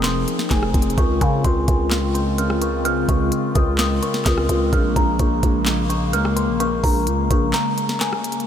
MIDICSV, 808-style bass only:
0, 0, Header, 1, 2, 480
1, 0, Start_track
1, 0, Tempo, 468750
1, 1001, Time_signature, 4, 2, 24, 8
1, 8672, End_track
2, 0, Start_track
2, 0, Title_t, "808-style bass"
2, 0, Program_c, 0, 38
2, 0, Note_on_c, 0, 29, 107
2, 262, Note_off_c, 0, 29, 0
2, 521, Note_on_c, 0, 29, 112
2, 751, Note_off_c, 0, 29, 0
2, 760, Note_on_c, 0, 29, 104
2, 991, Note_off_c, 0, 29, 0
2, 1001, Note_on_c, 0, 37, 115
2, 1231, Note_off_c, 0, 37, 0
2, 1241, Note_on_c, 0, 49, 104
2, 1471, Note_off_c, 0, 49, 0
2, 1480, Note_on_c, 0, 37, 112
2, 1711, Note_off_c, 0, 37, 0
2, 1721, Note_on_c, 0, 37, 106
2, 3120, Note_off_c, 0, 37, 0
2, 3161, Note_on_c, 0, 37, 106
2, 3391, Note_off_c, 0, 37, 0
2, 3641, Note_on_c, 0, 37, 110
2, 4102, Note_off_c, 0, 37, 0
2, 4360, Note_on_c, 0, 37, 116
2, 4591, Note_off_c, 0, 37, 0
2, 4600, Note_on_c, 0, 37, 107
2, 4831, Note_off_c, 0, 37, 0
2, 4840, Note_on_c, 0, 34, 112
2, 5071, Note_off_c, 0, 34, 0
2, 5081, Note_on_c, 0, 34, 104
2, 5311, Note_off_c, 0, 34, 0
2, 5320, Note_on_c, 0, 34, 105
2, 5551, Note_off_c, 0, 34, 0
2, 5561, Note_on_c, 0, 34, 112
2, 6280, Note_on_c, 0, 37, 104
2, 6296, Note_off_c, 0, 34, 0
2, 6641, Note_on_c, 0, 34, 99
2, 6656, Note_off_c, 0, 37, 0
2, 6983, Note_off_c, 0, 34, 0
2, 7001, Note_on_c, 0, 34, 108
2, 7241, Note_on_c, 0, 37, 103
2, 7257, Note_off_c, 0, 34, 0
2, 7469, Note_off_c, 0, 37, 0
2, 7481, Note_on_c, 0, 34, 109
2, 7712, Note_off_c, 0, 34, 0
2, 8672, End_track
0, 0, End_of_file